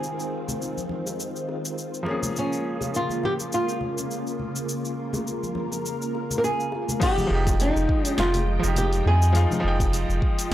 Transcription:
Already playing: string machine D#3 G#3 C4 F4, grand piano F3 G#3 D#4 G5, nylon-string guitar G#4
0.03 cabasa
0.20 cabasa
0.48 high bongo, low conga, cabasa
0.62 cabasa
0.77 high conga, cabasa
0.89 high conga
1.07 high bongo, cabasa
1.20 cabasa
1.36 cabasa
1.49 high bongo
1.65 cabasa
1.78 cabasa
1.94 cabasa
2.03 grand piano F3 A#3, high bongo
2.07 string machine C#3 A#3 F4, grand piano C#4 G#4
2.23 low conga, cabasa
2.36 nylon-string guitar C#4, cabasa
2.53 cabasa
2.81 high bongo, low conga, cabasa
2.94 nylon-string guitar F4, cabasa
3.09 high conga, cabasa
3.24 nylon-string guitar G4, high conga
3.40 cabasa
3.52 nylon-string guitar F4, cabasa
3.68 high bongo, cabasa
3.81 low conga
3.98 cabasa
4.11 cabasa
4.27 cabasa
4.39 string machine A#4, low conga
4.56 cabasa
4.69 cabasa
4.85 cabasa
5.13 high bongo, low conga, cabasa
5.27 cabasa
5.43 high conga, cabasa
5.55 high conga
5.72 high bongo, cabasa
5.86 cabasa
6.02 cabasa
6.15 high bongo
6.31 low conga, cabasa
6.38 nylon-string guitar A#4
6.44 nylon-string guitar G#4, cabasa
6.60 cabasa
6.72 high bongo
6.89 low conga, cabasa
7.00 grand piano F3 G#3 D#4 G4, string machine G#3 F4 D#5 G5, nylon-string guitar G4, kick, open hi-hat, crash, cabasa
7.18 high conga, low conga, cabasa
7.27 analog synth bass F1, grand piano F3 G#3
7.32 grand piano D#4 G4
7.47 kick, open hi-hat, high bongo, cabasa
7.60 nylon-string guitar D#4, open hi-hat, cabasa
7.76 analog synth bass F1, cabasa
7.89 kick
8.05 nylon-string guitar C#4, open hi-hat, cabasa
8.18 analog synth bass F1, nylon-string guitar F4, snare, open hi-hat, cabasa
8.34 open hi-hat, high bongo, low conga, cabasa
8.47 high conga
8.59 grand piano F3 G#3
8.63 analog synth bass F1, grand piano D#4 G4, cabasa
8.76 nylon-string guitar G4, open hi-hat, low conga, cabasa
8.93 open hi-hat, cabasa
9.06 analog synth bass F2, nylon-string guitar G#4
9.22 cabasa
9.33 grand piano F3 G#3 D#4 F4, open hi-hat, cabasa
9.51 high conga, low conga, cabasa
9.60 grand piano F3 G#3
9.64 analog synth bass F1, grand piano D#4 G5
9.80 kick, open hi-hat, high bongo, cabasa
9.93 open hi-hat, cabasa
10.09 analog synth bass F1, cabasa
10.22 kick
10.39 open hi-hat, cabasa

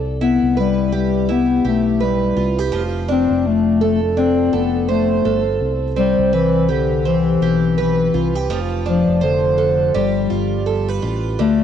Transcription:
Already playing: fingered electric bass C2, twelve-string acoustic guitar C4
0.21 bass clarinet B3, twelve-string acoustic guitar E4
0.42 fingered electric bass C2
0.57 bass clarinet G3, twelve-string acoustic guitar B4
0.92 bass clarinet G3, twelve-string acoustic guitar G4
1.29 bass clarinet B3, twelve-string acoustic guitar E4
1.65 fingered electric bass B1, bass clarinet A3, twelve-string acoustic guitar G4
2.00 bass clarinet G3, twelve-string acoustic guitar B4
2.36 fingered electric bass C2, twelve-string acoustic guitar F4
2.59 twelve-string acoustic guitar G4
2.72 fingered electric bass F1, twelve-string acoustic guitar F3
3.09 bass clarinet C4, twelve-string acoustic guitar D4
3.30 fingered electric bass F1
3.47 bass clarinet A3
3.81 bass clarinet A3, twelve-string acoustic guitar A4
4.17 bass clarinet C4, twelve-string acoustic guitar D4
4.53 fingered electric bass F1, bass clarinet B3, twelve-string acoustic guitar A4
4.89 bass clarinet A3, twelve-string acoustic guitar C5
5.25 fingered electric bass G1, twelve-string acoustic guitar A4
5.61 fingered electric bass C2
5.96 bass clarinet G3, twelve-string acoustic guitar C4
6.18 fingered electric bass C2
6.33 bass clarinet E3, twelve-string acoustic guitar B4
6.69 bass clarinet D3, twelve-string acoustic guitar G4
7.05 bass clarinet E3, twelve-string acoustic guitar C4
7.41 fingered electric bass B1, twelve-string acoustic guitar G4
7.78 bass clarinet E3, twelve-string acoustic guitar B4
8.14 fingered electric bass C2, twelve-string acoustic guitar F4
8.35 twelve-string acoustic guitar G4
8.49 fingered electric bass F1, twelve-string acoustic guitar F3
8.86 bass clarinet F3, twelve-string acoustic guitar D4
9.07 fingered electric bass F1
9.21 bass clarinet D3, twelve-string acoustic guitar C5
9.58 twelve-string acoustic guitar A4
9.94 fingered electric bass G1, twelve-string acoustic guitar G3, bass clarinet G3
10.30 fingered electric bass G1, twelve-string acoustic guitar F4
10.66 twelve-string acoustic guitar A4
10.89 twelve-string acoustic guitar B4
11.02 fingered electric bass A1, twelve-string acoustic guitar F4
11.39 fingered electric bass D2, twelve-string acoustic guitar D3, bass clarinet A3

